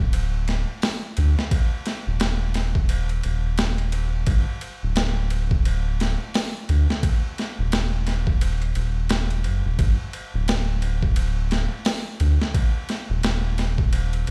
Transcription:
Already playing: D1
0.13 ride
0.48 snare, ride
0.82 snare, open hi-hat
1.17 D2, ride
1.39 snare
1.51 kick, ride
1.86 snare, ride
2.07 D#1
2.20 snare, ride
2.54 snare, ride
2.75 kick
2.89 ride
3.09 ride
3.23 D#1, ride
3.58 snare, ride
3.78 ride
3.92 ride
4.26 G1, kick, ride
4.61 ride
4.83 D1
4.96 snare, ride
5.30 ride
5.51 kick
5.65 ride
6.00 snare, ride
6.34 snare, open hi-hat
6.69 D2, ride
6.90 snare
7.03 kick, ride
7.38 snare, ride
7.59 D#1
7.72 snare, ride
8.07 snare, ride
8.27 kick
8.41 ride
8.62 ride
8.75 D#1, ride
9.09 snare, ride
9.31 ride
9.44 F#1, ride
9.65 D#1
9.79 G1, kick, ride
10.13 ride
10.34 D1
10.48 snare, ride
10.82 ride
11.03 kick
11.16 ride
11.51 snare, ride
11.85 snare, open hi-hat
12.20 D2, ride
12.42 snare
12.54 kick, ride
12.89 snare, ride
13.10 D#1
13.23 snare, ride
13.58 snare, ride
13.78 kick
13.93 ride
14.13 ride
14.27 D#1, ride

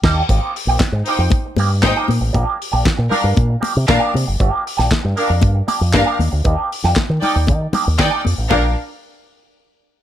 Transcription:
0.03 D#2 G3 A#3 D4 G4, kick, snare, crash
0.29 G#1 D#3 A#3 C4 G4, kick, closed hi-hat, muted conga
0.56 muted clean electric guitar stroke, open hi-hat
0.67 A#1 D#3 A#3 C4 G4
0.80 kick, snare, clap, closed hi-hat, high conga
0.92 G#2, muted clean electric guitar stroke
1.06 D#3 A#3 C4 D#4 G4 C5 G5, open hi-hat
1.18 F2, muted clean electric guitar stroke
1.30 kick, closed hi-hat, muted conga
1.45 muted clean electric guitar stroke
1.56 G2 D#3 A#3 C4 G4, open hi-hat, muted conga
1.70 muted clean electric guitar stroke
1.83 G#2 D#4 C5 G5, muted clean electric guitar stroke, kick, snare, clap, high conga
1.96 D#3 A#3 C4 G4
2.08 A#2, muted clean electric guitar stroke, open hi-hat, high conga
2.21 A1, muted clean electric guitar stroke
2.33 A#1 F3 A#3 D4 G4, kick, closed hi-hat, muted conga
2.58 muted clean electric guitar stroke, open hi-hat
2.72 A#1 F3 A#3 D4 G4
2.85 muted clean electric guitar stroke, kick, snare, clap, closed hi-hat, high conga
2.98 A#2, muted clean electric guitar stroke
3.10 F3 A#3 D4 G4 A#4 F5, open hi-hat, low conga
3.23 G2, muted clean electric guitar stroke
3.37 A#2, kick, closed hi-hat, muted conga
3.49 muted clean electric guitar stroke
3.61 F3 A#3 D4 G4, open hi-hat, muted conga
3.74 C3, muted clean electric guitar stroke
3.88 A#2 D4 A#4 F5, muted clean electric guitar stroke, kick, snare, clap, closed hi-hat, high conga
3.99 F3 A#3 D4 G4
4.14 C3, muted clean electric guitar stroke, open hi-hat, high conga
4.27 F#1, muted clean electric guitar stroke
4.40 G1 F3 A#3 D4 G4, kick, closed hi-hat
4.65 muted clean electric guitar stroke, open hi-hat
4.77 A#1 F3 A#3 D4 G4, snare
4.90 muted clean electric guitar stroke, kick, snare, clap, closed hi-hat, high conga
5.03 G2, muted clean electric guitar stroke
5.16 F3 A#3 D4 G4 A#4 F5, open hi-hat
5.29 F2, muted clean electric guitar stroke
5.41 G2, kick, closed hi-hat, muted conga
5.55 muted clean electric guitar stroke
5.67 F3 A#3 D4 G4, open hi-hat, muted conga
5.80 F2, muted clean electric guitar stroke
5.93 G2 D4 A#4 F5, muted clean electric guitar stroke, kick, snare, clap, closed hi-hat, high conga
6.06 F3 A#3 D4 G4
6.19 D#2, open hi-hat, high conga
6.32 D2, muted clean electric guitar stroke
6.44 D#2 D#3 A#3 D4 G4, kick, closed hi-hat
6.71 muted clean electric guitar stroke, open hi-hat
6.84 F2 D#3 A#3 D4 G4, snare
6.96 kick, snare, clap, closed hi-hat, high conga
7.10 D#3, muted clean electric guitar stroke
7.21 D#3 A#3 D4 D#4 G4 D5 G5, open hi-hat, low conga
7.36 D#2, muted clean electric guitar stroke
7.47 D#3, kick, closed hi-hat, muted conga
7.61 muted clean electric guitar stroke
7.73 D#3 A#3 D4 G4, open hi-hat, muted conga, low conga
7.86 D#2, muted clean electric guitar stroke
7.98 D#3 D#4 D5 G5, muted clean electric guitar stroke, kick, snare, clap, closed hi-hat, high conga
8.10 D#3 A#3 D4 G4
8.25 F2, muted clean electric guitar stroke, open hi-hat, high conga
8.38 A1, muted clean electric guitar stroke
8.49 A#1 F3 A#3 D4 G4 A#4 F5, kick, crash, muted conga

